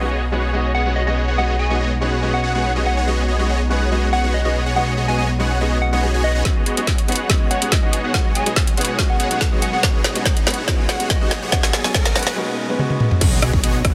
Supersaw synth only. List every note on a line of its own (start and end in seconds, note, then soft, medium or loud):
0.01 0.09 B3 medium
0.01 0.09 F#4 medium
0.01 0.09 G#4 medium
0.01 0.09 C#5 medium
0.01 0.09 D#5 loud
0.11 0.22 B3 medium
0.11 0.22 F#4 medium
0.11 0.22 G#4 medium
0.11 0.22 C#5 medium
0.11 0.22 D#5 loud
0.32 0.51 B3 medium
0.32 0.51 F#4 medium
0.32 0.51 G#4 medium
0.32 0.51 C#5 medium
0.32 0.51 F#5 medium
0.53 0.70 B3 medium
0.53 0.70 F#4 medium
0.53 0.70 G#4 medium
0.53 0.70 C#5 medium
0.53 0.70 D#5 medium
0.75 0.83 B3 medium
0.75 0.83 F#4 medium
0.75 0.83 G#4 medium
0.75 0.83 C#5 medium
0.75 0.83 F#5 loud
0.86 1.02 B3 medium
0.86 1.02 F#4 medium
0.86 1.02 G#4 medium
0.86 1.02 C#5 medium
0.86 1.02 F#5 medium
1.07 1.25 B3 medium
1.07 1.25 F#4 medium
1.07 1.25 G#4 medium
1.07 1.25 C#5 medium
1.07 1.25 D#5 medium
1.28 1.37 B3 medium
1.28 1.37 F#4 medium
1.28 1.37 G#4 medium
1.28 1.37 C#5 medium
1.28 1.37 F#5 loud
1.38 1.55 B3 medium
1.38 1.55 F#4 medium
1.38 1.55 G#4 medium
1.38 1.55 C#5 medium
1.38 1.55 D#5 loud
1.59 1.68 B3 medium
1.59 1.68 F#4 medium
1.59 1.68 G#4 medium
1.59 1.68 C#5 medium
1.59 1.68 D#5 medium
1.70 1.78 B3 medium
1.70 1.78 F#4 medium
1.70 1.78 G#4 medium
1.70 1.78 C#5 medium
1.70 1.78 D#5 loud
1.80 1.91 B3 medium
1.80 1.91 F#4 medium
1.80 1.91 G#4 medium
1.80 1.91 C#5 medium
1.80 1.91 D#5 loud
2.02 2.20 B3 medium
2.02 2.20 F#4 medium
2.02 2.20 G#4 medium
2.02 2.20 C#5 medium
2.02 2.20 F#5 medium
2.23 2.39 B3 medium
2.23 2.39 F#4 medium
2.23 2.39 G#4 medium
2.23 2.39 C#5 medium
2.23 2.39 D#5 medium
2.44 2.52 B3 medium
2.44 2.52 F#4 medium
2.44 2.52 G#4 medium
2.44 2.52 C#5 medium
2.44 2.52 F#5 loud
2.55 2.71 B3 medium
2.55 2.71 F#4 medium
2.55 2.71 G#4 medium
2.55 2.71 C#5 medium
2.55 2.71 F#5 medium
2.76 2.94 B3 medium
2.76 2.94 F#4 medium
2.76 2.94 G#4 medium
2.76 2.94 C#5 medium
2.76 2.94 D#5 medium
2.97 3.06 B3 medium
2.97 3.06 F#4 medium
2.97 3.06 G#4 medium
2.97 3.06 C#5 medium
2.97 3.06 F#5 loud
3.07 3.24 B3 medium
3.07 3.24 F#4 medium
3.07 3.24 G#4 medium
3.07 3.24 C#5 medium
3.07 3.24 D#5 loud
3.28 3.37 B3 medium
3.28 3.37 F#4 medium
3.28 3.37 G#4 medium
3.28 3.37 C#5 medium
3.28 3.37 D#5 medium
3.39 3.47 B3 medium
3.39 3.47 F#4 medium
3.39 3.47 G#4 medium
3.39 3.47 C#5 medium
3.39 3.47 D#5 loud
3.49 3.60 B3 medium
3.49 3.60 F#4 medium
3.49 3.60 G#4 medium
3.49 3.60 C#5 medium
3.49 3.60 D#5 loud
3.70 3.89 B3 medium
3.70 3.89 F#4 medium
3.70 3.89 G#4 medium
3.70 3.89 C#5 medium
3.70 3.89 F#5 medium
3.92 4.08 B3 medium
3.92 4.08 F#4 medium
3.92 4.08 G#4 medium
3.92 4.08 C#5 medium
3.92 4.08 D#5 medium
4.13 4.21 B3 medium
4.13 4.21 F#4 medium
4.13 4.21 G#4 medium
4.13 4.21 C#5 medium
4.13 4.21 F#5 loud
4.24 4.40 B3 medium
4.24 4.40 F#4 medium
4.24 4.40 G#4 medium
4.24 4.40 C#5 medium
4.24 4.40 F#5 loud
4.45 4.63 B3 medium
4.45 4.63 F#4 medium
4.45 4.63 G#4 medium
4.45 4.63 C#5 medium
4.45 4.63 D#5 medium
4.66 4.75 B3 medium
4.66 4.75 F#4 medium
4.66 4.75 G#4 medium
4.66 4.75 C#5 medium
4.66 4.75 F#5 loud
4.76 4.93 B3 loud
4.76 4.93 F#4 medium
4.76 4.93 G#4 medium
4.76 4.93 C#5 medium
4.76 4.93 D#5 loud
4.97 5.06 B3 medium
4.97 5.06 F#4 medium
4.97 5.06 G#4 medium
4.97 5.06 C#5 medium
4.97 5.06 D#5 medium
5.08 5.16 B3 medium
5.08 5.16 F#4 medium
5.08 5.16 G#4 medium
5.08 5.16 C#5 medium
5.08 5.16 D#5 loud
5.18 5.29 B3 medium
5.18 5.29 F#4 medium
5.18 5.29 G#4 medium
5.18 5.29 C#5 medium
5.18 5.29 D#5 loud
5.40 5.58 B3 medium
5.40 5.58 F#4 medium
5.40 5.58 G#4 medium
5.40 5.58 C#5 medium
5.40 5.58 F#5 medium
5.61 5.77 B3 medium
5.61 5.77 F#4 medium
5.61 5.77 G#4 medium
5.61 5.77 C#5 medium
5.61 5.78 D#5 medium
5.93 6.01 B3 medium
5.93 6.01 F#4 medium
5.93 6.01 G#4 medium
5.93 6.01 C#5 medium
5.93 6.01 D#5 loud
6.03 6.11 B3 medium
6.03 6.11 F#4 medium
6.03 6.11 G#4 medium
6.03 6.11 C#5 medium
6.03 6.11 D#5 medium
6.14 6.23 B3 medium
6.14 6.23 F#4 medium
6.14 6.23 G#4 medium
6.14 6.23 C#5 medium
6.14 6.23 G#5 loud
6.24 6.32 B3 medium
6.24 6.32 F#4 medium
6.24 6.32 G#4 medium
6.24 6.32 C#5 medium
6.24 6.32 F#5 medium
6.35 6.44 B3 medium
6.35 6.44 F#4 medium
6.35 6.44 G#4 medium
6.35 6.44 C#5 medium
6.35 6.44 F#5 medium
6.45 6.62 B3 medium
6.45 6.62 F#4 medium
6.45 6.62 G#4 medium
6.45 6.62 C#5 medium
6.45 6.62 D#5 loud
6.66 6.75 B3 medium
6.66 6.75 F#4 medium
6.66 6.75 G#4 medium
6.66 6.75 C#5 medium
6.66 6.75 D#5 medium
6.77 6.85 B3 medium
6.77 6.85 F#4 medium
6.77 6.85 G#4 medium
6.77 6.85 C#5 medium
6.77 6.85 D#5 loud
6.87 6.98 B3 medium
6.87 6.98 F#4 medium
6.87 6.98 G#4 medium
6.87 6.98 C#5 medium
6.87 6.98 D#5 loud
7.08 7.27 B3 medium
7.08 7.27 F#4 medium
7.08 7.27 G#4 medium
7.08 7.27 C#5 medium
7.08 7.27 F#5 medium
7.30 7.46 B3 medium
7.30 7.46 F#4 medium
7.30 7.46 G#4 medium
7.30 7.46 C#5 medium
7.30 7.46 D#5 medium
7.51 7.59 B3 loud
7.51 7.59 F#4 medium
7.51 7.59 G#4 medium
7.51 7.59 C#5 medium
7.51 7.59 F#5 loud
7.62 7.78 B3 medium
7.62 7.78 F#4 medium
7.62 7.78 G#4 medium
7.62 7.78 C#5 medium
7.62 7.78 F#5 medium
7.83 8.01 B3 medium
7.83 8.01 F#4 medium
7.83 8.01 G#4 medium
7.83 8.01 C#5 medium
7.83 8.01 D#5 medium
8.04 8.13 B3 loud
8.04 8.13 F#4 medium
8.04 8.13 G#4 medium
8.04 8.13 C#5 medium
8.04 8.13 F#5 loud
8.14 8.31 B3 loud
8.14 8.31 F#4 medium
8.14 8.31 G#4 medium
8.14 8.31 C#5 medium
8.14 8.31 D#5 loud
8.35 8.44 B3 medium
8.35 8.44 F#4 medium
8.35 8.44 G#4 medium
8.35 8.44 C#5 medium
8.35 8.44 D#5 medium
8.46 8.54 B3 medium
8.46 8.54 F#4 medium
8.46 8.54 G#4 medium
8.46 8.54 C#5 medium
8.46 8.54 D#5 loud
8.57 8.67 B3 medium
8.57 8.67 F#4 medium
8.57 8.67 G#4 medium
8.57 8.67 C#5 medium
8.57 8.67 D#5 loud
8.78 8.96 B3 medium
8.78 8.96 F#4 medium
8.78 8.96 G#4 medium
8.78 8.96 C#5 medium
8.78 8.96 F#5 medium
8.99 9.16 B3 medium
8.99 9.16 F#4 medium
8.99 9.16 G#4 medium
8.99 9.16 C#5 medium
8.99 9.15 D#5 medium
9.20 9.28 B3 loud
9.20 9.28 F#4 medium
9.20 9.28 G#4 medium
9.20 9.28 C#5 medium
9.20 9.28 F#5 loud
9.31 9.47 B3 medium
9.31 9.47 F#4 medium
9.31 9.47 G#4 medium
9.31 9.47 C#5 medium
9.31 9.47 F#5 medium
9.52 9.71 B3 medium
9.52 9.71 F#4 medium
9.52 9.71 G#4 medium
9.52 9.71 C#5 medium
9.52 9.71 D#5 medium
9.73 9.82 B3 medium
9.73 9.82 F#4 medium
9.73 9.82 G#4 medium
9.73 9.82 C#5 medium
9.73 9.82 F#5 loud
9.83 10.00 B3 loud
9.83 10.00 F#4 medium
9.83 10.00 G#4 medium
9.83 10.00 C#5 medium
9.83 10.00 D#5 loud
10.04 10.13 B3 medium
10.04 10.13 F#4 medium
10.04 10.13 G#4 medium
10.04 10.13 C#5 medium
10.04 10.13 D#5 medium
10.15 10.23 B3 medium
10.15 10.23 F#4 medium
10.15 10.23 G#4 medium
10.15 10.23 C#5 medium
10.15 10.23 D#5 loud
10.26 10.36 B3 medium
10.26 10.36 F#4 medium
10.26 10.36 G#4 medium
10.26 10.36 C#5 medium
10.26 10.36 D#5 loud
10.47 10.65 B3 medium
10.47 10.65 F#4 medium
10.47 10.65 G#4 medium
10.47 10.65 C#5 medium
10.47 10.65 F#5 medium
10.68 10.85 B3 medium
10.68 10.85 F#4 medium
10.68 10.85 G#4 medium
10.68 10.85 C#5 medium
10.68 10.85 D#5 medium
10.89 10.97 B3 loud
10.89 10.97 F#4 medium
10.89 10.97 G#4 medium
10.89 10.97 C#5 medium
10.89 10.97 F#5 loud
11.00 11.16 B3 medium
11.00 11.16 F#4 medium
11.00 11.16 G#4 medium
11.00 11.16 C#5 medium
11.00 11.16 F#5 medium
11.21 11.40 B3 medium
11.21 11.40 F#4 medium
11.21 11.40 G#4 medium
11.21 11.40 C#5 medium
11.21 11.40 D#5 medium
11.42 11.51 B3 loud
11.42 11.51 F#4 medium
11.42 11.51 G#4 medium
11.42 11.51 C#5 medium
11.42 11.51 F#5 loud
11.52 11.69 B3 loud
11.52 11.69 F#4 medium
11.52 11.69 G#4 medium
11.52 11.69 C#5 medium
11.52 11.69 D#5 loud
11.73 11.82 B3 medium
11.73 11.82 F#4 medium
11.73 11.82 G#4 medium
11.73 11.82 C#5 medium
11.73 11.82 D#5 medium
11.84 11.92 B3 loud
11.84 11.92 F#4 medium
11.84 11.92 G#4 medium
11.84 11.92 C#5 medium
11.84 11.92 D#5 loud
11.94 12.05 B3 loud
11.94 12.05 F#4 medium
11.94 12.05 G#4 medium
11.94 12.05 C#5 medium
11.94 12.05 D#5 loud
12.15 12.34 B3 medium
12.15 12.34 F#4 medium
12.15 12.34 G#4 medium
12.15 12.34 C#5 medium
12.15 12.34 F#5 medium
13.21 13.38 B3 loud
13.21 13.38 F#4 medium
13.21 13.38 G#4 medium
13.21 13.38 C#5 medium
13.21 13.38 D#5 loud
13.42 13.51 B3 medium
13.42 13.51 F#4 medium
13.42 13.51 G#4 medium
13.42 13.51 C#5 medium
13.42 13.51 D#5 medium
13.53 13.61 B3 loud
13.53 13.61 F#4 medium
13.53 13.61 G#4 medium
13.53 13.61 C#5 medium
13.53 13.61 D#5 loud
13.63 13.74 B3 medium
13.63 13.74 F#4 medium
13.63 13.74 G#4 medium
13.63 13.74 C#5 medium
13.63 13.74 D#5 loud
13.85 13.94 B3 medium
13.85 13.94 F#4 medium
13.85 13.94 G#4 medium
13.85 13.94 C#5 medium
13.85 13.94 F#5 medium